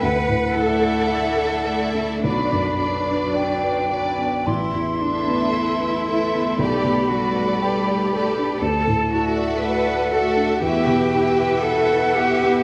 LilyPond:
<<
  \new Staff \with { instrumentName = "Flute" } { \time 4/4 \key d \mixolydian \tempo 4 = 57 fis''4. r8 b''4 g''4 | c'''2 b''2 | a''8 r8 fis''4 g''4 fis''4 | }
  \new Staff \with { instrumentName = "Violin section" } { \time 4/4 \key d \mixolydian r8 e''4 e''8 d''8 d''4 d''8 | r8 e''4 e''8 d''8 d''4 d''8 | r8 e''4 e''8 e''8 e''4 e''8 | }
  \new Staff \with { instrumentName = "Violin section" } { \time 4/4 \key d \mixolydian r8 <a' d''>4 <a' d''>8 b'8 b'4 b'8 | r8 <a' b'>4 <a' b'>8 <a' b'>8 <a' b'>4 <a' b'>8 | r8 <a' d''>4 <a' d''>8 <fis' b'>8 <fis' b'>4 <fis' b'>8 | }
  \new Staff \with { instrumentName = "Cello section" } { \time 4/4 \key d \mixolydian b'8 a'4. d'4. r8 | e'8 d'8 e'4 g'8 fis'8 g'4 | a'8 fis'8 b'8 a'8 g'4 a'8 g'8 | }
  \new Staff \with { instrumentName = "Felt piano" } { \time 4/4 \key d \mixolydian d,16 a,16 e'16 a'16 e''16 a'16 d''16 a16 b,,16 fis,16 d'16 b'16 d''16 b'16 d''16 b16 | a,,16 e,16 e'16 b16 e''16 b16 a'16 b16 b,,16 b,16 g16 d''16 g''16 d''16 a'16 d'16 | d,16 a,16 e'16 d''16 e''16 d''16 fis'16 d'16 e,16 b,16 e'16 b'16 e''16 b'16 fis''16 b16 | }
  \new Staff \with { instrumentName = "Viola section" } { \time 4/4 \key d \mixolydian r8 <a e'>4 <a e'>8 <fis fis'>8 <fis d'>4 <fis d'>8 | r8 <a e'>4 <a e'>8 <a g'>8 <g a>4 <a g'>8 | r8 <a fis'>4 <a fis'>8 <b e'>8 <b e'>4 <b e'>8 | }
>>